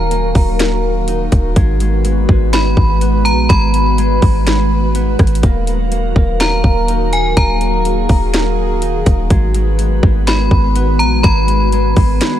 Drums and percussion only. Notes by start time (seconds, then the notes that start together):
0.11 closed hi-hat
0.35 kick, open hi-hat
0.60 snare, closed hi-hat
1.08 closed hi-hat
1.32 kick, closed hi-hat
1.56 kick, closed hi-hat
1.80 closed hi-hat
2.05 closed hi-hat
2.29 kick
2.53 snare, closed hi-hat
2.77 kick
3.01 closed hi-hat
3.26 closed hi-hat
3.50 kick, closed hi-hat
3.74 closed hi-hat
3.98 closed hi-hat
4.22 kick, open hi-hat
4.47 snare, closed hi-hat
4.95 closed hi-hat
5.19 kick, cross-stick, closed hi-hat
5.27 closed hi-hat
5.35 closed hi-hat
5.43 kick, closed hi-hat
5.67 closed hi-hat
5.92 closed hi-hat
6.16 kick
6.40 snare, closed hi-hat
6.64 kick
6.88 closed hi-hat
7.13 closed hi-hat
7.37 kick, closed hi-hat
7.61 closed hi-hat
7.85 closed hi-hat
8.09 kick, open hi-hat
8.34 snare, closed hi-hat
8.82 closed hi-hat
9.06 kick, closed hi-hat
9.30 kick, closed hi-hat
9.54 closed hi-hat
9.79 closed hi-hat
10.03 kick
10.27 snare, closed hi-hat
10.51 kick
10.76 closed hi-hat
11.00 closed hi-hat
11.24 kick, closed hi-hat
11.48 closed hi-hat
11.72 closed hi-hat
11.96 kick, open hi-hat
12.21 snare, closed hi-hat